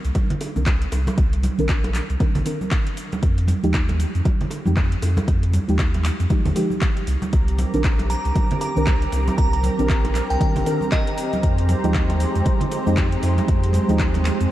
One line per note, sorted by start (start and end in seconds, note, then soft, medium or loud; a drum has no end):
0.05 0.11 C2 medium
0.05 closed hi-hat soft
0.05 cabasa soft
0.15 kick loud
0.15 closed hi-hat medium
0.15 high conga medium
0.15 cabasa soft
0.30 closed hi-hat medium
0.30 low conga medium
0.41 open hi-hat loud
0.41 high bongo medium
0.41 cabasa medium
0.55 0.85 C2 medium
0.55 1.54 D#3 medium
0.55 1.55 C4 medium
0.55 1.55 D4 medium
0.55 1.55 A#4 medium
0.55 high conga medium
0.55 cabasa soft
0.66 kick loud
0.66 clap loud
0.66 closed hi-hat medium
0.66 cabasa soft
0.82 closed hi-hat medium
0.92 1.09 C2 medium
0.92 open hi-hat loud
0.92 high bongo medium
0.92 cabasa medium
1.07 closed hi-hat soft
1.07 high bongo medium
1.07 high conga medium
1.07 cabasa soft
1.18 1.49 C2 loud
1.18 kick loud
1.18 closed hi-hat medium
1.18 cabasa soft
1.33 closed hi-hat medium
1.43 open hi-hat loud
1.43 high conga medium
1.43 cabasa medium
1.58 2.00 A#1 medium
1.58 2.17 D#3 medium
1.58 2.18 C4 medium
1.58 2.18 D4 medium
1.58 2.18 A#4 loud
1.58 closed hi-hat soft
1.58 cabasa soft
1.69 kick loud
1.69 clap loud
1.69 closed hi-hat medium
1.69 cabasa soft
1.84 closed hi-hat medium
1.84 high bongo medium
1.84 high conga medium
1.94 clap medium
1.94 open hi-hat loud
1.94 cabasa medium
2.10 2.16 C2 medium
2.10 closed hi-hat soft
2.10 cabasa soft
2.20 2.43 D#3 medium
2.20 2.43 C4 medium
2.20 2.43 D4 medium
2.20 2.44 A#4 loud
2.20 kick loud
2.20 closed hi-hat medium
2.20 high conga medium
2.20 cabasa soft
2.35 2.42 A#1 medium
2.35 open hi-hat medium
2.35 high bongo medium
2.35 low conga loud
2.45 2.59 D#3 medium
2.45 2.60 C4 medium
2.45 2.60 D4 medium
2.45 2.60 A#4 medium
2.45 open hi-hat loud
2.45 high bongo medium
2.45 cabasa medium
2.61 high conga medium
2.61 cabasa soft
2.71 kick loud
2.71 clap loud
2.71 closed hi-hat medium
2.71 cabasa soft
2.87 closed hi-hat medium
2.97 open hi-hat loud
2.97 cabasa medium
3.12 closed hi-hat soft
3.12 high conga medium
3.12 cabasa soft
3.23 3.54 F2 loud
3.23 kick loud
3.23 closed hi-hat medium
3.23 cabasa soft
3.38 closed hi-hat soft
3.48 open hi-hat loud
3.48 high conga loud
3.48 cabasa medium
3.63 4.05 D#2 medium
3.63 3.81 F3 loud
3.63 3.81 G#3 medium
3.63 3.81 D#4 medium
3.63 3.81 G4 loud
3.63 closed hi-hat soft
3.63 cabasa soft
3.74 kick loud
3.74 clap loud
3.74 closed hi-hat medium
3.74 cabasa soft
3.89 closed hi-hat medium
3.89 high bongo medium
3.89 high conga medium
4.00 open hi-hat loud
4.00 cabasa medium
4.15 4.21 F2 medium
4.15 closed hi-hat soft
4.15 cabasa soft
4.25 kick loud
4.25 closed hi-hat medium
4.25 high conga loud
4.25 cabasa soft
4.41 closed hi-hat soft
4.41 low conga medium
4.50 open hi-hat loud
4.50 high bongo medium
4.50 cabasa medium
4.65 4.96 F2 medium
4.65 5.65 F3 medium
4.65 5.65 G#3 medium
4.65 5.65 D#4 medium
4.65 5.66 G4 medium
4.65 high conga medium
4.65 cabasa soft
4.77 kick loud
4.77 clap loud
4.77 closed hi-hat medium
4.77 cabasa soft
4.92 closed hi-hat medium
5.02 5.20 F2 medium
5.02 open hi-hat loud
5.02 high bongo medium
5.02 cabasa medium
5.17 closed hi-hat soft
5.17 high bongo medium
5.17 high conga loud
5.17 cabasa soft
5.28 5.59 F2 loud
5.28 kick loud
5.28 closed hi-hat medium
5.28 cabasa soft
5.43 closed hi-hat soft
5.54 open hi-hat loud
5.54 high conga medium
5.54 cabasa medium
5.68 6.10 D#2 medium
5.68 6.27 F3 medium
5.68 6.28 G#3 medium
5.68 6.28 D#4 medium
5.68 6.28 G4 medium
5.68 closed hi-hat soft
5.68 cabasa soft
5.79 kick loud
5.79 clap loud
5.79 closed hi-hat medium
5.79 cabasa soft
5.94 closed hi-hat soft
5.94 high bongo medium
5.94 high conga medium
6.05 finger snap medium
6.05 clap medium
6.05 open hi-hat loud
6.05 cabasa medium
6.20 6.26 F2 medium
6.20 closed hi-hat soft
6.20 cabasa soft
6.30 6.53 F3 medium
6.30 6.53 G#3 medium
6.30 6.54 D#4 medium
6.30 6.54 G4 medium
6.30 kick loud
6.30 closed hi-hat medium
6.30 high conga medium
6.30 cabasa soft
6.46 6.52 D#2 medium
6.46 open hi-hat medium
6.46 high bongo medium
6.46 low conga loud
6.56 6.70 F3 medium
6.56 6.70 G#3 medium
6.56 6.70 D#4 medium
6.56 6.70 G4 medium
6.56 open hi-hat loud
6.56 high bongo medium
6.56 cabasa medium
6.71 high conga medium
6.71 cabasa soft
6.82 kick loud
6.82 clap loud
6.82 closed hi-hat medium
6.82 cabasa soft
6.97 closed hi-hat medium
7.07 7.17 C2 medium
7.07 open hi-hat loud
7.07 cabasa medium
7.22 closed hi-hat soft
7.22 high conga medium
7.22 cabasa soft
7.33 7.64 C2 loud
7.33 14.51 C4 medium
7.33 11.39 G4 medium
7.33 11.39 A#4 medium
7.33 14.51 A#5 medium
7.33 11.39 D6 medium
7.33 kick loud
7.33 closed hi-hat medium
7.33 cabasa soft
7.48 closed hi-hat soft
7.59 open hi-hat loud
7.59 high conga loud
7.59 cabasa medium
7.73 8.16 A#1 medium
7.73 7.91 D#3 loud
7.73 7.91 C4 medium
7.73 7.91 D4 medium
7.73 7.91 A#4 loud
7.73 closed hi-hat soft
7.73 cabasa soft
7.84 kick loud
7.84 clap loud
7.84 closed hi-hat medium
7.84 cabasa soft
7.99 closed hi-hat soft
7.99 high bongo medium
7.99 high conga medium
8.10 8.59 A#5 medium
8.10 open hi-hat loud
8.10 cabasa medium
8.25 8.31 C2 medium
8.25 closed hi-hat soft
8.25 cabasa soft
8.36 kick loud
8.36 closed hi-hat medium
8.36 high conga medium
8.36 cabasa soft
8.51 closed hi-hat medium
8.51 low conga medium
8.61 8.99 A#5 medium
8.61 open hi-hat loud
8.61 high bongo medium
8.61 cabasa medium
8.76 9.06 C2 medium
8.76 9.75 D#3 medium
8.76 9.75 C4 medium
8.76 9.76 D4 medium
8.76 9.76 A#4 medium
8.76 high conga medium
8.76 cabasa soft
8.87 kick loud
8.87 clap loud
8.87 closed hi-hat medium
8.87 cabasa soft
9.02 closed hi-hat soft
9.12 9.30 C2 medium
9.12 open hi-hat loud
9.12 high bongo medium
9.12 cabasa medium
9.28 closed hi-hat soft
9.28 high bongo medium
9.28 high conga medium
9.28 cabasa soft
9.38 9.69 C2 loud
9.38 9.48 A#5 medium
9.38 kick loud
9.38 closed hi-hat medium
9.38 cabasa soft
9.53 9.60 A#5 medium
9.53 closed hi-hat medium
9.63 open hi-hat loud
9.63 high conga medium
9.63 cabasa medium
9.78 10.21 A#1 medium
9.78 10.38 D#3 medium
9.78 10.38 C4 medium
9.78 10.38 D4 medium
9.78 10.39 A#4 loud
9.78 closed hi-hat soft
9.78 cabasa soft
9.89 kick loud
9.89 clap loud
9.89 closed hi-hat medium
9.89 cabasa soft
10.05 closed hi-hat soft
10.05 high bongo medium
10.05 high conga medium
10.15 clap medium
10.15 open hi-hat loud
10.15 cabasa medium
10.30 10.37 C2 medium
10.30 10.37 G5 medium
10.30 closed hi-hat soft
10.30 cabasa soft
10.40 10.64 D#3 medium
10.40 10.64 C4 medium
10.40 10.64 D4 medium
10.40 10.64 A#4 medium
10.40 10.50 G5 medium
10.40 kick loud
10.40 closed hi-hat medium
10.40 high conga medium
10.40 cabasa soft
10.56 10.62 A#1 medium
10.56 open hi-hat medium
10.56 high bongo medium
10.56 low conga medium
10.66 10.80 D#3 medium
10.66 10.80 C4 medium
10.66 10.80 D4 medium
10.66 10.80 A#4 medium
10.66 open hi-hat loud
10.66 high bongo medium
10.66 cabasa medium
10.81 high conga medium
10.81 cabasa soft
10.92 11.43 D#5 medium
10.92 kick loud
10.92 clap loud
10.92 closed hi-hat medium
10.92 cabasa soft
11.07 closed hi-hat medium
11.18 open hi-hat loud
11.18 cabasa medium
11.33 closed hi-hat soft
11.33 high conga medium
11.33 cabasa soft
11.43 11.74 F2 loud
11.43 14.51 G#3 medium
11.43 14.51 G4 medium
11.43 14.51 C5 medium
11.43 kick loud
11.43 closed hi-hat medium
11.43 cabasa soft
11.58 closed hi-hat medium
11.69 open hi-hat loud
11.69 high conga medium
11.69 cabasa medium
11.84 12.26 D#2 medium
11.84 12.01 F3 loud
11.84 12.01 G#3 medium
11.84 12.01 D#4 medium
11.84 12.02 G4 loud
11.84 closed hi-hat soft
11.84 cabasa soft
11.94 kick loud
11.94 clap loud
11.94 closed hi-hat medium
11.94 cabasa soft
12.10 closed hi-hat medium
12.10 high bongo medium
12.10 high conga medium
12.20 open hi-hat loud
12.20 cabasa medium
12.35 12.42 F2 medium
12.35 closed hi-hat soft
12.35 cabasa soft
12.45 kick loud
12.45 closed hi-hat medium
12.45 high conga medium
12.45 cabasa soft
12.61 closed hi-hat medium
12.61 low conga medium
12.71 open hi-hat loud
12.71 high bongo medium
12.71 cabasa medium
12.86 13.16 F2 medium
12.86 13.85 F3 medium
12.86 13.85 G#3 medium
12.86 13.86 D#4 medium
12.86 13.86 G4 medium
12.86 high conga medium
12.86 cabasa soft
12.97 kick loud
12.97 clap loud
12.97 closed hi-hat medium
12.97 cabasa soft
13.12 closed hi-hat medium
13.23 13.40 F2 medium
13.23 open hi-hat loud
13.23 high bongo medium
13.23 cabasa medium
13.38 closed hi-hat soft
13.38 high bongo medium
13.38 high conga medium
13.38 cabasa soft
13.48 13.80 F2 loud
13.48 kick loud
13.48 closed hi-hat medium
13.48 cabasa soft
13.64 closed hi-hat medium
13.73 open hi-hat loud
13.73 high conga medium
13.73 cabasa medium
13.88 14.31 D#2 medium
13.88 14.48 F3 medium
13.88 14.48 G#3 medium
13.88 14.49 D#4 medium
13.88 14.49 G4 loud
13.88 closed hi-hat soft
13.88 cabasa soft
14.00 kick loud
14.00 clap loud
14.00 closed hi-hat medium
14.00 cabasa soft
14.14 closed hi-hat medium
14.14 high bongo medium
14.14 high conga medium
14.25 finger snap medium
14.25 clap medium
14.25 open hi-hat loud
14.25 cabasa medium
14.40 14.47 F2 medium
14.40 closed hi-hat soft
14.40 cabasa soft